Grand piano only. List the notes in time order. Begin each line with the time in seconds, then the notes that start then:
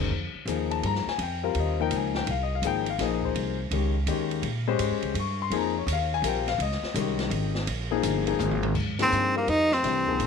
Already playing: A#3 D#4 G#4 C5
0.47 F3 A#3 D#4 G#4
0.71 A5
0.86 A#5
1.09 G#5
1.23 G5
1.44 G3 C4 F4 A#4 C5
1.60 D#5
1.80 F3 A#3 D#4 A#4 G5
1.96 G#5
2.17 G5
2.31 F5
2.43 D#5
2.55 F5
2.64 F3 A#3 D#4 G#4 G5
2.90 F5
3.00 F3 A#3 D#4 G#4 D#5
3.25 C5
3.72 D#3 G#3 C#4 G4
4.08 D#3 G#3 C#4 G4
4.67 G#3 C#4 G4 C5
5.20 C#6
5.42 C6
5.52 F3 A#3 D#4 G#4
5.57 A#5
5.78 C#5
5.93 F5
6.14 G#5
6.24 G3 C4 F4 A#4
6.28 G5
6.48 F5
6.62 D#5
6.95 D#3 G#3 C#4 G4
7.91 F3 A#3 D#4 G#4
8.27 F3 A#3 D#4 G#4
9.00 F3 A#3 D#4 G#4
9.35 G3 C4 F4 A#4
9.84 E3 A3 D4 G4
10.07 F3 A#3 D#4 G#4